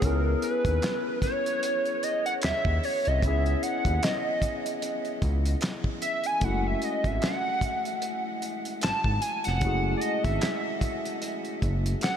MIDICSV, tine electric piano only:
0, 0, Header, 1, 2, 480
1, 0, Start_track
1, 0, Tempo, 800000
1, 12, Time_signature, 4, 2, 24, 8
1, 7301, End_track
2, 0, Start_track
2, 0, Title_t, "Tine electric piano"
2, 0, Program_c, 0, 4
2, 0, Control_c, 0, 64, 127
2, 0, Note_on_c, 0, 59, 58
2, 6, Note_on_c, 0, 61, 58
2, 19, Control_c, 0, 64, 0
2, 29, Note_on_c, 0, 64, 52
2, 40, Note_on_c, 0, 68, 64
2, 130, Control_c, 0, 64, 127
2, 1898, Note_off_c, 0, 59, 0
2, 1905, Note_off_c, 0, 61, 0
2, 1917, Note_off_c, 0, 64, 0
2, 1918, Note_on_c, 0, 59, 57
2, 1922, Note_off_c, 0, 68, 0
2, 1929, Note_on_c, 0, 61, 49
2, 1952, Note_on_c, 0, 64, 54
2, 1965, Note_on_c, 0, 68, 68
2, 3821, Note_off_c, 0, 59, 0
2, 3827, Note_off_c, 0, 61, 0
2, 3838, Note_off_c, 0, 64, 0
2, 3839, Note_on_c, 0, 57, 61
2, 3844, Note_off_c, 0, 68, 0
2, 3848, Note_on_c, 0, 61, 53
2, 3861, Control_c, 0, 64, 0
2, 3863, Note_on_c, 0, 64, 54
2, 3872, Note_on_c, 0, 66, 51
2, 3885, Note_on_c, 0, 56, 59
2, 3960, Control_c, 0, 64, 127
2, 5742, Note_off_c, 0, 57, 0
2, 5746, Note_off_c, 0, 61, 0
2, 5751, Note_off_c, 0, 56, 0
2, 5753, Note_off_c, 0, 64, 0
2, 5758, Note_off_c, 0, 66, 0
2, 5758, Note_on_c, 0, 56, 50
2, 5767, Note_on_c, 0, 61, 52
2, 5781, Note_on_c, 0, 64, 57
2, 5791, Note_on_c, 0, 66, 58
2, 5796, Note_on_c, 0, 57, 61
2, 5802, Note_on_c, 0, 68, 64
2, 5810, Note_off_c, 0, 56, 0
2, 7301, Note_off_c, 0, 57, 0
2, 7301, Note_off_c, 0, 61, 0
2, 7301, Note_off_c, 0, 64, 0
2, 7301, Note_off_c, 0, 66, 0
2, 7301, Note_off_c, 0, 68, 0
2, 7301, End_track
0, 0, End_of_file